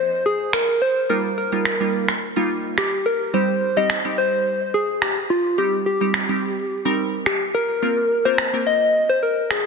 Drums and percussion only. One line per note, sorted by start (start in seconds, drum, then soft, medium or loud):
0.53 finger snap loud
1.65 finger snap loud
2.08 finger snap medium
2.78 finger snap loud
3.90 finger snap loud
5.02 finger snap loud
6.14 finger snap loud
7.26 finger snap loud
8.38 finger snap loud
9.51 finger snap loud